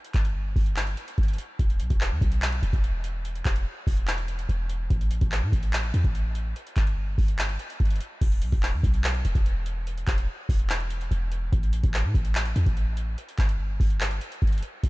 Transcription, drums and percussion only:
0.05 closed hi-hat medium
0.14 kick loud
0.14 clap medium
0.14 closed hi-hat medium
0.25 closed hi-hat medium
0.56 kick medium
0.56 open hi-hat medium
0.66 closed hi-hat medium
0.77 clap loud
0.77 closed hi-hat medium
0.87 closed hi-hat medium
0.97 closed hi-hat medium
1.08 closed hi-hat medium
1.18 kick loud
1.18 closed hi-hat soft
1.23 closed hi-hat soft
1.28 closed hi-hat medium
1.33 closed hi-hat medium
1.38 closed hi-hat medium
1.59 kick loud
1.59 closed hi-hat medium
1.70 closed hi-hat medium
1.80 closed hi-hat medium
1.90 kick medium
1.90 closed hi-hat medium
2.01 clap loud
2.21 kick medium
2.21 closed hi-hat medium
2.32 closed hi-hat medium
2.42 clap loud
2.42 closed hi-hat medium
2.52 closed hi-hat medium
2.63 closed hi-hat medium
2.73 kick loud
2.73 closed hi-hat medium
2.84 closed hi-hat medium
3.04 closed hi-hat medium
3.25 closed hi-hat medium
3.35 closed hi-hat medium
3.45 kick loud
3.45 clap medium
3.45 closed hi-hat medium
3.56 closed hi-hat medium
3.87 kick medium
3.87 open hi-hat medium
3.97 closed hi-hat medium
4.08 clap loud
4.08 closed hi-hat medium
4.18 closed hi-hat medium
4.28 closed hi-hat medium
4.39 closed hi-hat medium
4.49 closed hi-hat medium
4.69 closed hi-hat medium
4.90 kick loud
4.90 closed hi-hat medium
5.01 closed hi-hat medium
5.11 closed hi-hat medium
5.21 kick medium
5.21 closed hi-hat medium
5.32 clap loud
5.52 kick medium
5.52 closed hi-hat medium
5.63 closed hi-hat medium
5.73 clap loud
5.73 closed hi-hat medium
5.83 closed hi-hat medium
5.94 closed hi-hat medium
6.04 kick loud
6.04 closed hi-hat medium
6.15 closed hi-hat medium
6.35 closed hi-hat medium
6.56 closed hi-hat medium
6.67 closed hi-hat medium
6.76 kick loud
6.76 clap medium
6.76 closed hi-hat medium
6.87 closed hi-hat medium
7.18 kick medium
7.18 open hi-hat medium
7.28 closed hi-hat medium
7.39 clap loud
7.39 closed hi-hat medium
7.49 closed hi-hat medium
7.59 closed hi-hat medium
7.70 closed hi-hat medium
7.80 kick loud
7.80 closed hi-hat soft
7.85 closed hi-hat soft
7.90 closed hi-hat medium
7.96 closed hi-hat medium
8.01 closed hi-hat medium
8.21 kick loud
8.21 closed hi-hat medium
8.21 crash loud
8.32 closed hi-hat medium
8.42 closed hi-hat medium
8.52 kick medium
8.52 closed hi-hat medium
8.63 clap loud
8.83 kick medium
8.83 closed hi-hat medium
8.94 closed hi-hat medium
9.04 clap loud
9.04 closed hi-hat medium
9.14 closed hi-hat medium
9.25 closed hi-hat medium
9.35 kick loud
9.35 closed hi-hat medium
9.46 closed hi-hat medium
9.66 closed hi-hat medium
9.87 closed hi-hat medium
9.98 closed hi-hat medium
10.07 kick loud
10.07 clap medium
10.07 closed hi-hat medium
10.18 closed hi-hat medium
10.49 kick medium
10.49 open hi-hat medium
10.59 closed hi-hat medium
10.70 clap loud
10.70 closed hi-hat medium
10.80 closed hi-hat medium
10.90 closed hi-hat medium
11.01 closed hi-hat medium
11.12 closed hi-hat medium
11.32 closed hi-hat medium
11.53 kick loud
11.53 closed hi-hat medium
11.63 closed hi-hat medium
11.73 closed hi-hat medium
11.84 kick medium
11.84 closed hi-hat medium
11.94 clap loud
12.14 kick medium
12.14 closed hi-hat medium
12.25 closed hi-hat medium
12.35 clap loud
12.35 closed hi-hat medium
12.45 closed hi-hat medium
12.56 closed hi-hat medium
12.66 kick loud
12.66 closed hi-hat medium
12.77 closed hi-hat medium
12.97 closed hi-hat medium
13.18 closed hi-hat medium
13.29 closed hi-hat medium
13.38 kick loud
13.38 clap loud
13.38 closed hi-hat medium
13.49 closed hi-hat medium
13.80 kick medium
13.80 open hi-hat medium
13.90 closed hi-hat medium
14.01 clap loud
14.01 closed hi-hat medium
14.11 closed hi-hat medium
14.21 closed hi-hat medium
14.32 closed hi-hat medium
14.42 kick medium
14.42 closed hi-hat soft
14.47 closed hi-hat soft
14.52 closed hi-hat medium
14.58 closed hi-hat medium
14.63 closed hi-hat medium
14.83 kick loud
14.83 closed hi-hat medium

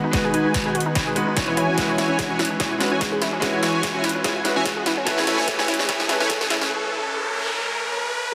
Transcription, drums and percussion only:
0.13 kick loud
0.13 snare medium
0.13 closed hi-hat medium
0.34 closed hi-hat medium
0.54 kick medium
0.54 snare medium
0.54 closed hi-hat medium
0.75 closed hi-hat soft
0.80 closed hi-hat medium
0.95 kick loud
0.95 snare medium
0.95 closed hi-hat medium
1.16 closed hi-hat medium
1.37 kick loud
1.37 snare medium
1.37 closed hi-hat medium
1.57 closed hi-hat medium
1.78 kick medium
1.78 snare medium
1.78 closed hi-hat medium
1.98 snare medium
1.98 closed hi-hat medium
2.19 kick medium
2.19 snare medium
2.19 closed hi-hat medium
2.39 snare medium
2.39 closed hi-hat soft
2.45 closed hi-hat medium
2.60 kick medium
2.60 snare medium
2.60 closed hi-hat medium
2.81 snare medium
2.81 closed hi-hat medium
3.01 kick loud
3.01 snare medium
3.01 closed hi-hat medium
3.22 snare medium
3.22 closed hi-hat medium
3.42 kick medium
3.42 snare medium
3.42 closed hi-hat medium
3.63 snare medium
3.63 closed hi-hat medium
3.83 kick medium
3.83 snare medium
3.83 closed hi-hat medium
4.04 snare medium
4.04 closed hi-hat soft
4.09 closed hi-hat medium
4.24 kick loud
4.24 snare medium
4.24 closed hi-hat medium
4.45 snare medium
4.45 closed hi-hat medium
4.66 kick loud
4.66 snare medium
4.66 closed hi-hat medium
4.86 snare medium
4.86 closed hi-hat medium
5.07 kick loud
5.07 snare medium
5.07 closed hi-hat medium
5.18 snare medium
5.27 snare medium
5.27 closed hi-hat medium
5.38 snare medium
5.48 kick loud
5.48 snare medium
5.48 closed hi-hat medium
5.59 snare medium
5.68 snare medium
5.68 closed hi-hat medium
5.74 closed hi-hat medium
5.79 snare medium
5.89 kick loud
5.89 snare loud
5.89 closed hi-hat medium
6.00 snare medium
6.09 snare loud
6.09 closed hi-hat medium
6.20 snare medium
6.30 kick loud
6.30 snare loud
6.30 closed hi-hat medium
6.41 snare medium
6.50 snare loud
6.50 closed hi-hat medium
6.61 snare medium

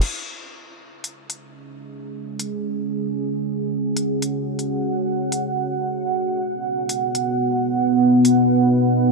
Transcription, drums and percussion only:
0.01 crash medium
1.04 open hi-hat medium
1.30 open hi-hat medium
2.39 open hi-hat medium
3.97 open hi-hat medium
4.22 open hi-hat medium
4.59 open hi-hat soft
5.32 open hi-hat medium
6.89 open hi-hat medium
7.15 open hi-hat medium
8.25 open hi-hat medium

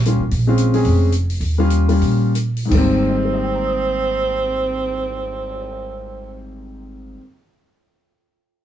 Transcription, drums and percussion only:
0.05 closed hi-hat soft
0.31 kick soft
0.31 open hi-hat soft
0.58 closed hi-hat medium
0.74 open hi-hat soft
0.85 kick soft
0.85 open hi-hat soft
1.12 closed hi-hat soft
1.30 open hi-hat soft
1.41 kick soft
1.41 open hi-hat soft
1.70 closed hi-hat soft
1.89 open hi-hat soft
2.02 kick soft
2.02 open hi-hat soft
2.35 closed hi-hat medium
2.57 open hi-hat soft
2.71 kick medium
2.71 crash medium
2.94 cymbal swell soft

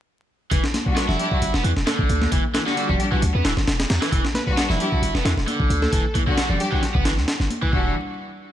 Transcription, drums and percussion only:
0.51 kick loud
0.51 closed hi-hat medium
0.64 snare medium
0.74 snare medium
0.74 closed hi-hat medium
0.74 high conga medium
0.86 kick loud
0.97 snare loud
0.97 closed hi-hat medium
1.09 snare soft
1.09 low conga medium
1.19 closed hi-hat medium
1.31 kick medium
1.42 closed hi-hat medium
1.54 snare medium
1.64 closed hi-hat medium
1.76 snare soft
1.87 snare loud
1.87 closed hi-hat medium
1.87 high conga medium
1.99 kick loud
2.09 closed hi-hat medium
2.22 snare soft
2.22 high conga medium
2.32 kick loud
2.32 closed hi-hat medium
2.55 snare loud
2.55 closed hi-hat medium
2.55 high conga medium
2.67 snare soft
2.77 closed hi-hat medium
2.89 kick medium
2.89 low conga loud
3.00 closed hi-hat medium
3.12 kick loud
3.22 closed hi-hat medium
3.45 snare loud
3.45 closed hi-hat medium
3.57 snare medium
3.67 snare loud
3.67 closed hi-hat medium
3.80 snare loud
3.80 closed hi-hat medium
3.90 snare loud
3.90 closed hi-hat medium
4.02 snare loud
4.02 closed hi-hat medium
4.12 kick loud
4.12 closed hi-hat medium
4.25 snare medium
4.34 snare medium
4.34 closed hi-hat medium
4.34 high conga medium
4.47 kick medium
4.57 snare loud
4.57 closed hi-hat medium
4.70 snare soft
4.70 low conga medium
4.80 closed hi-hat medium
4.92 kick loud
5.03 closed hi-hat medium
5.15 snare medium
5.25 snare loud
5.25 closed hi-hat medium
5.38 snare soft
5.47 closed hi-hat medium
5.47 high conga medium
5.60 kick medium
5.70 closed hi-hat medium
5.82 snare soft
5.82 high conga medium
5.93 kick loud
5.93 closed hi-hat medium
6.15 kick loud
6.15 closed hi-hat medium
6.15 high conga medium
6.27 kick loud
6.38 snare loud
6.38 closed hi-hat medium
6.50 low conga loud
6.60 closed hi-hat medium
6.72 kick loud
6.83 snare soft
6.83 closed hi-hat medium
6.95 kick medium
7.05 snare loud
7.05 closed hi-hat medium
7.17 snare soft
7.28 snare loud
7.28 closed hi-hat medium
7.40 snare soft
7.50 closed hi-hat medium
7.50 high conga medium
7.63 kick medium
7.73 kick loud

